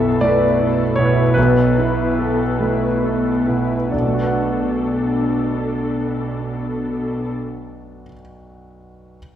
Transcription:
Already playing: grand piano B1 E4 A4 E5, cello section B2, viola section B3 A4
0.21 grand piano A3 D5, viola section E4 B4
0.59 viola section B3 A4, grand piano E4
0.96 grand piano B2 C#5
1.00 viola section E4 B4
1.34 grand piano B1 B4
1.40 viola section B3 A4
1.78 grand piano E4, viola section E4 B4
2.18 viola section B3 A4, grand piano A4
2.60 grand piano A3, viola section E4 B4
3.03 viola section B3 A4, grand piano E4
3.47 grand piano B2, viola section E4 B4
3.92 grand piano B1 D5, cello section B2, viola section D4 A4
4.00 grand piano B2
4.06 grand piano A3
4.14 grand piano F#4
4.21 grand piano B4
4.27 grand piano F#5

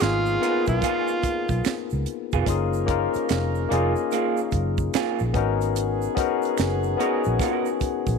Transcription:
Already playing: horn section F3 G#3 C#4 G#4, tine electric piano A#3 B3 D#4 F4 G#4
0.00 fingered electric bass G#1, tenor saxophone F4, finger snap, snare, closed hi-hat, shaker
0.26 shaker
0.39 tine electric piano B3 D#4 F4 A#4, clean electric guitar B3 F4, closed hi-hat
0.44 clean electric guitar G#4, tine electric piano A#4
0.51 tine electric piano B4
0.66 fingered electric bass B1, tenor saxophone F4, kick, shaker
0.82 clean electric guitar B3 F4 G#4, kick, closed hi-hat, shaker
1.08 shaker
1.23 muted fingered electric bass stroke, kick, closed hi-hat, shaker
1.49 fingered electric bass B1, kick, closed hi-hat, shaker
1.65 finger snap, snare, closed hi-hat, shaker
1.90 fingered electric bass C#2, shaker
2.06 closed hi-hat
2.32 fingered electric bass F1, clean electric guitar B3 F4 G#4, kick, shaker
2.45 fingered electric bass F#1, horn section F3 A#3 C#4 A#4, tine electric piano A#3 C#4 D#4 F4, kick, closed hi-hat, shaker
2.50 tine electric piano G#4
2.73 shaker
2.86 tine electric piano A#3 C#4 D#4 F4, kick, closed hi-hat
2.91 tine electric piano A#4
3.14 muted fingered electric bass stroke, closed hi-hat, shaker
3.29 fingered electric bass F1, finger snap, snare, closed hi-hat, shaker
3.55 shaker
3.69 fingered electric bass F1, tine electric piano A#3 C#4 D#4 F4, clean electric guitar A#3 F4 G#4, closed hi-hat
3.73 tine electric piano G#4
3.96 shaker
4.11 clean electric guitar A#3 F4 G#4, closed hi-hat, shaker
4.37 shaker
4.51 fingered electric bass F#1, kick, closed hi-hat, shaker
4.78 kick, shaker
4.94 clean electric guitar A#3 F4 G#4, finger snap, snare, closed hi-hat, shaker
5.19 fingered electric bass A#1, shaker
5.33 fingered electric bass G#1, horn section D#3 G#3 B3 G#4, tine electric piano B3 C#4 D#4 F#4, kick, closed hi-hat
5.38 tine electric piano A#4
5.61 closed hi-hat, shaker
5.76 closed hi-hat, shaker
6.02 shaker
6.15 tine electric piano B3 C#4 D#4 F#4, kick, closed hi-hat
6.20 tine electric piano A#4
6.42 closed hi-hat, shaker
6.58 fingered electric bass F#1, finger snap, snare, closed hi-hat, shaker
6.83 shaker
6.97 tine electric piano B3 C#4 D#4 F#4, clean electric guitar B3 F#4, closed hi-hat
7.01 tine electric piano G#4, clean electric guitar A#4
7.24 fingered electric bass A#1, shaker
7.39 clean electric guitar A#3 F4 A4, kick, closed hi-hat, shaker
7.52 clean electric guitar B3 F#4 A#4
7.65 shaker
7.80 muted fingered electric bass stroke, kick, closed hi-hat, shaker
8.07 fingered electric bass A#1, kick, closed hi-hat, shaker

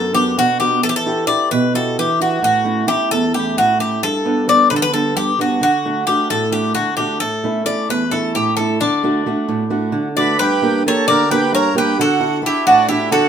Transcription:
Already playing: steel-string acoustic guitar F#2, bouzouki A4
0.13 steel-string acoustic guitar B3 D4 F#4, bouzouki G4
0.37 steel-string acoustic guitar B2, bouzouki F#4
0.60 steel-string acoustic guitar B3 D4 F#4, bouzouki G4
0.83 steel-string acoustic guitar E3, bouzouki A4
0.89 bouzouki G4
0.96 bouzouki A4
1.06 steel-string acoustic guitar E4 F#4 G4
1.27 steel-string acoustic guitar E4 F#4 G4, bouzouki D5
1.51 steel-string acoustic guitar B2, bouzouki B4
1.74 steel-string acoustic guitar E4 F#4 G4, bouzouki A4
1.99 steel-string acoustic guitar E3, bouzouki G4
2.20 steel-string acoustic guitar E4 F#4 G4, bouzouki F#4
2.42 steel-string acoustic guitar A2, bouzouki F#4
2.65 steel-string acoustic guitar A3 C#4 E4
2.87 steel-string acoustic guitar A3 C#4 E4, bouzouki G4
3.11 steel-string acoustic guitar E2, bouzouki A4
3.34 steel-string acoustic guitar A3 C#4 E4, bouzouki G4
3.57 steel-string acoustic guitar A2, bouzouki F#4
3.79 steel-string acoustic guitar A3 C#4 E4, bouzouki G4
4.03 steel-string acoustic guitar G2, bouzouki A4
4.25 steel-string acoustic guitar G3 B3 D4
4.48 steel-string acoustic guitar G3 B3 D4, bouzouki D5
4.70 steel-string acoustic guitar D3, bouzouki B4
4.76 bouzouki A4
4.82 bouzouki B4
4.93 steel-string acoustic guitar G3 B3 D4, bouzouki A4
5.16 steel-string acoustic guitar G2, bouzouki G4
5.39 steel-string acoustic guitar G3 B3 D4, bouzouki F#4
5.61 steel-string acoustic guitar D3, bouzouki F#4
5.85 steel-string acoustic guitar A3 D4 F#4
6.07 steel-string acoustic guitar A3 D4 F#4, bouzouki G4
6.30 steel-string acoustic guitar A2, bouzouki A4
6.52 steel-string acoustic guitar A3 D4 F#4, bouzouki G4
6.75 steel-string acoustic guitar D3, bouzouki F#4
6.97 steel-string acoustic guitar A3 D4 F#4, bouzouki G4
7.20 steel-string acoustic guitar A2, bouzouki A4
7.44 steel-string acoustic guitar A3 C#4 E4
7.65 steel-string acoustic guitar A3 C#4 E4, bouzouki D5
7.89 steel-string acoustic guitar E2, bouzouki B4
8.11 steel-string acoustic guitar A3 C#4 E4, bouzouki A4
8.35 steel-string acoustic guitar A2, bouzouki G4
8.57 steel-string acoustic guitar A3 C#4 E4, bouzouki A4
8.81 steel-string acoustic guitar D3, bouzouki D4
9.03 steel-string acoustic guitar A3 D4 F#4
9.26 steel-string acoustic guitar A3 D4 F#4
9.48 steel-string acoustic guitar A2
9.70 steel-string acoustic guitar A3 D4 F#4
9.92 steel-string acoustic guitar D3
10.17 steel-string acoustic guitar A3 D4 F#4, accordion B4, bouzouki D5
10.39 steel-string acoustic guitar G2, accordion G4, bouzouki B4
10.62 steel-string acoustic guitar A#3 D4 G4
10.86 steel-string acoustic guitar A#3 D4 G4, accordion A4, bouzouki C#5
11.08 steel-string acoustic guitar D3, accordion A#4, bouzouki D5
11.30 steel-string acoustic guitar A#3 D4 G4, accordion G4, bouzouki B4
11.52 steel-string acoustic guitar G2, accordion A#4, bouzouki C#5
11.75 steel-string acoustic guitar A#3 D4 G4, accordion G4, bouzouki B4
11.99 steel-string acoustic guitar D3, accordion F#4, bouzouki A4
12.20 steel-string acoustic guitar D4 E4 F#4
12.42 steel-string acoustic guitar D4 E4 F#4, accordion E4
12.46 bouzouki G4
12.67 steel-string acoustic guitar A2, accordion D4, bouzouki F#4
12.88 steel-string acoustic guitar D4 E4 F#4, accordion E4, bouzouki G4
13.11 steel-string acoustic guitar D3, accordion F#4, bouzouki A4

